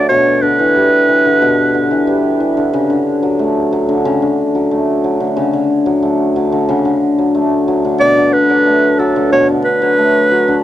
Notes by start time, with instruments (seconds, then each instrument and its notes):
Already playing: hammered dulcimer D3 A3
0.09 hammered dulcimer B2, clarinet C#5
0.42 hammered dulcimer D3, clarinet B4
0.59 hammered dulcimer E3
0.76 hammered dulcimer G3
1.08 hammered dulcimer E3
1.26 hammered dulcimer D3
1.42 hammered dulcimer B2
1.74 hammered dulcimer D3
1.91 hammered dulcimer E3
2.07 hammered dulcimer G3
2.40 hammered dulcimer E3
2.57 hammered dulcimer D3
2.73 hammered dulcimer C#3
2.90 hammered dulcimer D3
3.23 hammered dulcimer F#3
3.39 hammered dulcimer A3
3.72 hammered dulcimer F#3
3.89 hammered dulcimer D3
4.05 hammered dulcimer C#3
4.22 hammered dulcimer D3
4.55 hammered dulcimer F#3
4.71 hammered dulcimer A3
5.04 hammered dulcimer F#3
5.20 hammered dulcimer D3
5.37 hammered dulcimer C#3
5.53 hammered dulcimer D3
5.86 hammered dulcimer F#3
6.03 hammered dulcimer A3
6.36 hammered dulcimer F#3
6.52 hammered dulcimer D3
6.69 hammered dulcimer C#3
6.85 hammered dulcimer D3
7.18 hammered dulcimer F#3
7.35 hammered dulcimer A3
7.68 hammered dulcimer F#3
7.85 hammered dulcimer D3
8.00 hammered dulcimer B2, clarinet D5
8.17 hammered dulcimer D3
8.33 clarinet B4
8.50 hammered dulcimer F#3
8.66 hammered dulcimer A3
8.99 hammered dulcimer F#3, clarinet A4
9.16 hammered dulcimer D3
9.32 hammered dulcimer B2, clarinet C#5
9.49 hammered dulcimer D3
9.65 clarinet B4
9.82 hammered dulcimer F#3
9.98 hammered dulcimer A3
10.31 hammered dulcimer F#3
10.48 hammered dulcimer D3